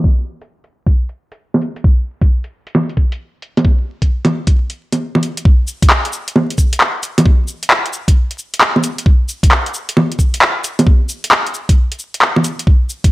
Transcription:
0.04 kick
0.42 closed hi-hat
0.64 closed hi-hat
0.86 kick, closed hi-hat
1.09 closed hi-hat
1.32 closed hi-hat
1.54 low bongo
1.62 closed hi-hat
1.76 closed hi-hat
1.84 kick
2.21 kick, closed hi-hat
2.44 closed hi-hat
2.67 closed hi-hat
2.75 low bongo
2.89 closed hi-hat
2.97 kick
3.12 closed hi-hat
3.42 closed hi-hat
3.57 closed hi-hat, low bongo
3.65 kick
4.02 kick, closed hi-hat
4.25 closed hi-hat, low bongo
4.47 kick, closed hi-hat
4.70 closed hi-hat
4.92 closed hi-hat, low bongo
5.15 low bongo
5.23 closed hi-hat
5.37 closed hi-hat
5.45 kick
5.68 cabasa
5.82 kick, closed hi-hat
5.90 clap
6.05 closed hi-hat
6.13 cabasa
6.28 closed hi-hat
6.36 low bongo
6.50 closed hi-hat
6.58 kick, cabasa
6.73 closed hi-hat
6.81 clap
7.03 closed hi-hat, cabasa
7.18 closed hi-hat, low bongo
7.26 kick
7.48 cabasa
7.63 closed hi-hat
7.71 clap
7.86 closed hi-hat
7.93 cabasa
8.08 kick, closed hi-hat
8.31 closed hi-hat
8.39 cabasa
8.54 closed hi-hat
8.61 clap
8.76 low bongo
8.84 closed hi-hat, cabasa
8.98 closed hi-hat
9.06 kick
9.29 cabasa
9.43 kick, closed hi-hat
9.52 clap
9.66 closed hi-hat
9.74 cabasa
9.89 closed hi-hat
9.97 low bongo
10.12 closed hi-hat
10.19 kick, cabasa
10.34 closed hi-hat
10.42 clap
10.64 closed hi-hat, cabasa
10.79 closed hi-hat, low bongo
10.87 kick
11.09 cabasa
11.24 closed hi-hat
11.32 clap
11.47 closed hi-hat
11.54 cabasa
11.69 kick, closed hi-hat
11.92 closed hi-hat
11.99 cabasa
12.14 closed hi-hat
12.22 clap
12.36 low bongo
12.44 closed hi-hat, cabasa
12.59 closed hi-hat
12.67 kick
12.90 cabasa
13.04 kick, closed hi-hat

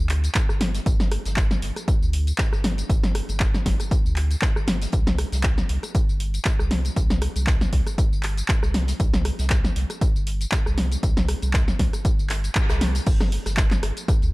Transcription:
0.00 D2
0.09 clap, closed hi-hat, open hi-hat
0.24 closed hi-hat, tambourine
0.35 kick, snare, clap, closed hi-hat, tambourine
0.49 G1, cross-stick, tambourine
0.60 snare, closed hi-hat, open hi-hat
0.75 snare, open hi-hat, tambourine
0.86 G1, kick, closed hi-hat, tambourine
1.00 snare, tambourine
1.12 cross-stick, closed hi-hat, open hi-hat
1.25 G1, snare, closed hi-hat, tambourine
1.36 kick, snare, clap, closed hi-hat, tambourine
1.50 snare, closed hi-hat, tambourine
1.62 G1, snare, closed hi-hat, open hi-hat
1.76 cross-stick, closed hi-hat, tambourine
1.88 kick, closed hi-hat, tambourine
2.02 D2, tambourine
2.13 closed hi-hat, open hi-hat
2.27 closed hi-hat, tambourine
2.38 kick, snare, clap, closed hi-hat, tambourine
2.53 G1, cross-stick, tambourine
2.64 snare, closed hi-hat, open hi-hat
2.78 closed hi-hat, tambourine
2.90 G1, kick, closed hi-hat, tambourine
3.04 snare, tambourine
3.15 cross-stick, closed hi-hat, open hi-hat
3.29 G1, closed hi-hat, tambourine
3.40 kick, snare, clap, closed hi-hat, tambourine
3.54 snare, closed hi-hat, tambourine
3.66 G1, kick, snare, closed hi-hat, open hi-hat
3.80 cross-stick, closed hi-hat, tambourine
3.91 kick, closed hi-hat, tambourine
4.05 D2, tambourine
4.16 clap, closed hi-hat, open hi-hat
4.31 closed hi-hat, tambourine
4.42 kick, snare, clap, closed hi-hat, tambourine
4.56 G1, cross-stick, tambourine
4.67 snare, closed hi-hat, open hi-hat
4.81 snare, open hi-hat, tambourine
4.92 C2, kick, closed hi-hat, tambourine
5.06 snare, tambourine
5.18 cross-stick, closed hi-hat, open hi-hat
5.32 C2, snare, closed hi-hat, tambourine
5.43 kick, snare, clap, closed hi-hat, tambourine
5.58 snare, closed hi-hat, tambourine
5.69 C2, snare, closed hi-hat, open hi-hat
5.83 cross-stick, closed hi-hat, tambourine
5.95 kick, closed hi-hat, tambourine
6.09 G1, tambourine
6.20 closed hi-hat, open hi-hat
6.34 closed hi-hat, tambourine
6.45 kick, snare, clap, closed hi-hat, tambourine
6.59 C2, cross-stick, tambourine
6.71 snare, closed hi-hat, open hi-hat
6.85 closed hi-hat, tambourine
6.96 C2, kick, closed hi-hat, tambourine
7.10 snare, tambourine
7.21 cross-stick, closed hi-hat, open hi-hat
7.36 C2, closed hi-hat, tambourine
7.47 kick, snare, clap, closed hi-hat, tambourine
7.61 snare, closed hi-hat, tambourine
7.72 C2, kick, closed hi-hat, open hi-hat
7.87 cross-stick, closed hi-hat, tambourine
7.98 kick, closed hi-hat, tambourine
8.12 G1, tambourine
8.23 clap, closed hi-hat, open hi-hat
8.37 closed hi-hat, tambourine
8.48 kick, snare, clap, closed hi-hat, tambourine
8.63 C2, cross-stick, tambourine
8.74 snare, closed hi-hat, open hi-hat
8.87 snare, open hi-hat, tambourine
9.00 C2, kick, closed hi-hat, tambourine
9.13 snare, tambourine
9.25 cross-stick, closed hi-hat, open hi-hat
9.39 C2, snare, closed hi-hat, tambourine
9.50 kick, snare, clap, closed hi-hat, tambourine
9.64 snare, closed hi-hat, tambourine
9.76 C2, snare, closed hi-hat, open hi-hat
9.90 cross-stick, closed hi-hat, tambourine
10.01 kick, closed hi-hat, tambourine
10.15 G1, tambourine
10.27 closed hi-hat, open hi-hat
10.41 closed hi-hat, tambourine
10.52 kick, snare, clap, closed hi-hat, tambourine
10.66 C2, cross-stick, tambourine
10.78 snare, closed hi-hat, open hi-hat
10.92 closed hi-hat, tambourine
11.03 C2, kick, closed hi-hat, tambourine
11.17 snare, tambourine
11.29 cross-stick, closed hi-hat, open hi-hat
11.42 C2, closed hi-hat, tambourine
11.53 kick, snare, clap, closed hi-hat, tambourine
11.68 snare, closed hi-hat, tambourine
11.79 C2, kick, snare, closed hi-hat, open hi-hat
11.93 cross-stick, closed hi-hat, tambourine
12.05 kick, closed hi-hat, tambourine
12.19 G1, tambourine
12.30 snare, clap, closed hi-hat, open hi-hat
12.44 closed hi-hat, tambourine
12.55 kick, clap, closed hi-hat, tambourine
12.69 C2, cross-stick, snare, closed hi-hat, tambourine
12.81 snare, open hi-hat
12.95 closed hi-hat, open hi-hat, tambourine
13.06 G1, kick, closed hi-hat, tambourine, crash
13.21 cross-stick, snare, closed hi-hat, tambourine
13.32 closed hi-hat, open hi-hat
13.46 G1, cross-stick, snare, closed hi-hat, tambourine
13.56 kick, snare, clap, closed hi-hat, tambourine
13.71 snare, clap, closed hi-hat, tambourine
13.83 G1, cross-stick, snare, closed hi-hat, open hi-hat
13.97 closed hi-hat, tambourine
14.08 kick, cross-stick, closed hi-hat, tambourine
14.22 D2, closed hi-hat, tambourine

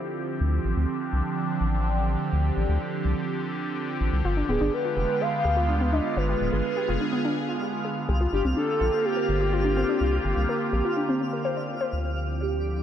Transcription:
Already playing: D3 F3 C4 E4 G4
0.41 D2 D4
0.65 A1
0.77 D2
1.13 C2
1.61 A1
2.33 D2
2.57 A1
2.69 D2
3.05 C2
4.01 A1
4.13 C2
4.24 G1 G#3 B3 F4 F5
4.37 D4
4.49 D1 B3 G#4
4.61 G1 D4
4.73 B4
4.85 F4
4.97 F1 G4
5.21 G#4 F5
5.45 D2 G4
5.57 F4
5.69 D4
5.81 B3
5.93 D4 D#5
6.17 G1 F4 G#4 B4
6.29 G4
6.41 D1
6.53 G1 G#4
6.77 G4
6.89 F1 F4
7.01 D4
7.13 B3
7.25 D4
7.49 F4
7.61 G4
7.85 G#4
8.09 C2 D3 A#3 C4 F4 G4
8.21 F4
8.33 G1 D4 G4
8.45 C2 C4
8.57 D4 A4
8.81 A#1 F4
8.93 G4
9.05 G4
9.17 A#4
9.29 G1
9.41 G4
9.53 F4
9.65 D4
9.77 C4
9.89 D4
10.01 C2
10.13 F4
10.25 G1 G4
10.37 C2
10.49 A#4
10.73 A#1 G4
10.85 F4
10.97 D4
11.09 C4
11.21 C4
11.33 A#4
11.45 C5
11.57 D5
11.81 C5
11.93 D2 D3 F3 C4 D4 E4 G4 D5
12.41 G4

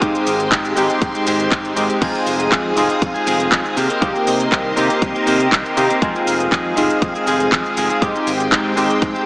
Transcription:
Already playing: G#3
0.01 G#2 D#3 G#3 C4 D#4 G4 G5 C6, kick, closed hi-hat, shaker
0.14 G#3 C4 G4, closed hi-hat, shaker
0.27 G#1, open hi-hat, shaker
0.40 closed hi-hat, shaker
0.51 G#2 D#3 G#3 C4 G4, kick, clap, closed hi-hat, shaker
0.65 closed hi-hat, shaker
0.76 G#1 D#3 G#3 C4 D#4 G4, open hi-hat, shaker
0.89 G#3 C4 G4, closed hi-hat, shaker
1.02 G#2, kick, closed hi-hat, shaker
1.14 G#3 C4 G4, closed hi-hat, shaker
1.26 G#1 D#3 G#3 C4 G4, open hi-hat, shaker
1.39 G#3 C4 G4, closed hi-hat, shaker
1.51 G#2 D#3 G#3 C4 G4, kick, clap, closed hi-hat, shaker
1.65 closed hi-hat, shaker
1.76 G#1 D#3 G#3 C4 D#4 G4, open hi-hat, shaker
1.89 G#3 C4 G4, closed hi-hat, shaker
2.01 F2 D#3 G#3 C4 D#4 F4 G#4 F5 D#6, kick, closed hi-hat, crash, shaker
2.14 G#3 C4 G#4, shaker
2.26 F1, open hi-hat, shaker
2.40 closed hi-hat, shaker
2.51 F2 D#3 G#3 C4 G#4, kick, clap, closed hi-hat, shaker
2.76 F1 D#3 G#3 C4 D#4 F4 G#4, open hi-hat, shaker
2.89 G#3 C4 G#4, closed hi-hat, shaker
3.02 F2, kick, closed hi-hat, shaker
3.14 G#3 C4 G#4, shaker
3.26 F1 D#3 G#3 C4 G#4, open hi-hat, shaker
3.40 G#3 C4 G#4, closed hi-hat, shaker
3.51 F2 D#3 G#3 C4 G#4, kick, clap, closed hi-hat, shaker
3.65 shaker
3.76 C3 D#3 A#3 C4 G4 A#4 D#5 C6, open hi-hat, shaker
3.89 A#3 C4 G4, closed hi-hat, shaker
4.01 C2 D#3 A#3 C4 D#4 G4, kick, closed hi-hat, shaker
4.14 A#3 C4 G4, shaker
4.27 C3, open hi-hat, shaker
4.40 closed hi-hat, shaker
4.51 C2 D#3 A#3 C4 G4, kick, clap, closed hi-hat, shaker
4.76 C3 D#3 A#3 C4 D#4 G4, open hi-hat, shaker
4.89 A#3 C4 G4, closed hi-hat, shaker
5.02 C2, kick, closed hi-hat, shaker
5.14 A#3 C4 G4, shaker
5.26 C3 D#3 A#3 C4 G4, open hi-hat, shaker
5.39 A#3 C4 G4, closed hi-hat, shaker
5.51 C2 D#3 A#3 C4, kick, clap, closed hi-hat, shaker
5.66 shaker
5.76 C3 D#3 A#3 C4 D#4 G4, open hi-hat, shaker
5.89 A#3 C4 G4, closed hi-hat, shaker
6.01 F2 D#3 G#3 C4 D#4 F4 G#4 F5 D#6, kick, closed hi-hat, shaker
6.14 G#3 C4 G#4, shaker
6.27 F1, open hi-hat, shaker
6.40 closed hi-hat, shaker
6.51 F2 D#3 G#3 C4 G#4, kick, clap, closed hi-hat, shaker
6.76 F1 D#3 G#3 C4 D#4 F4 G#4, open hi-hat, shaker
6.90 closed hi-hat, shaker
7.02 F2, kick, closed hi-hat, shaker
7.14 G#3 C4 G#4, shaker
7.26 F1 D#3 G#3 C4 G#4, open hi-hat, shaker
7.39 G#3 C4 G#4, closed hi-hat, shaker
7.52 F2 D#3 G#3 C4 G#4, kick, clap, closed hi-hat, shaker
7.65 shaker
7.76 F1 D#3 G#3 C4 G#4, open hi-hat, shaker
7.90 G#3 C4 G#4, closed hi-hat, shaker
8.01 G#2 D#3 G#3 C4 D#4 G4 G5 C6, kick, closed hi-hat, shaker
8.15 G#3 C4 G4, shaker
8.27 G#1, open hi-hat, shaker
8.40 closed hi-hat, shaker
8.51 G#2 D#3 G#3 C4 G4, kick, clap, closed hi-hat, shaker
8.76 G#1 D#3 G#3 C4 D#4 G4, open hi-hat, shaker
8.90 closed hi-hat, shaker
9.02 G#2, kick, closed hi-hat, shaker
9.15 G#3 C4 G4, shaker

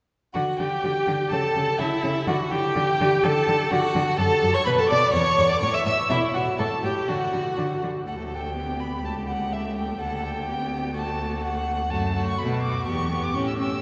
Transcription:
0.34 D3 F#4 F#5
0.59 D3 G4 G5
0.84 D3
1.07 D3
1.30 C#3 A4 A5
1.55 C#3
1.79 C#3 E4 E5
2.04 C#3
2.27 D3 F#4 F#5
2.51 D3 G4 G5
2.76 D3
3.01 D3
3.23 D3 A4 A5
3.48 D3
3.71 D3 F#4 F#5
3.95 D3
4.18 F#2 A4 A5
4.43 F#2
4.54 C#5 C#6
4.65 B2 B4 B5
4.79 A4 A5
4.89 B2 D5 D6
5.13 E2 C#5 C#6
5.38 E2
5.49 D5 D6
5.61 A2 C#5 C#6
5.74 E5 E6
5.86 A2 E5 E6
6.10 B2 E4 E5
6.34 B2 F#4 F#5
6.59 A2 A4 A5
6.83 A2 G4 G5
7.08 D3 F#4 F#5
7.33 D3
7.58 D3
7.83 D3
8.07 D2 A3 A4 F#5
8.32 G5
8.56 B3 G4
8.80 B5
9.04 C#2 A3 A5
9.28 F#5
9.53 E5
9.76 G5
9.99 D2 A4 F#5
10.25 G5
10.48 B3 G4
10.96 A3 F#4 A5
11.44 F#5
11.90 F#2 A3 F#4 A5
12.16 A3 F#4
12.27 C#6
12.39 B2 A3 F#4 B5
12.51 A5
12.62 A3 F#4 D6
12.86 E2 B3 G4 C#6
13.11 B3 G4
13.23 D6
13.35 A2 C#4 G4 C#6
13.48 E6
13.59 C#4 G4 E6

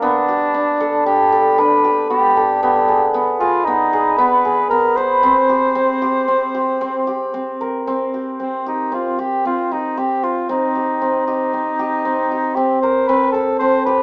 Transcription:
Already playing: G4
0.01 B3 D4
0.29 G4
0.54 D4
0.80 A4
1.06 D4 G4
1.32 A4
1.58 D4 B4
1.84 G4
2.10 B3 G4
2.37 A4
2.63 B3 G4
2.88 G#4
3.14 B3
3.40 F4 G#4
3.64 B3 D#4
3.93 G#4
4.18 B3 B4
4.45 G#4
4.70 B3 A#4
4.96 B4 C5
5.23 C4
5.49 G4
5.75 C4
6.02 G4
6.28 C4
6.55 G4
6.81 C4
7.07 G4
7.34 C4
7.61 A#4
7.87 C4
8.14 G4
8.40 C4
8.66 D#4 G4
8.92 C4 F4
9.19 G4
9.45 C4 F4
9.71 D#4 G4
9.97 C4 G4
10.23 F4 C5
10.49 C4 D#4
10.75 G4
11.02 C4
11.27 D#4 G4
11.53 C4
11.79 G4
12.05 C4
12.32 G4
12.55 C4 G4
12.82 A#4 C5
13.07 C4 B4
13.32 A4
13.59 C4 C5
13.85 G4 B4

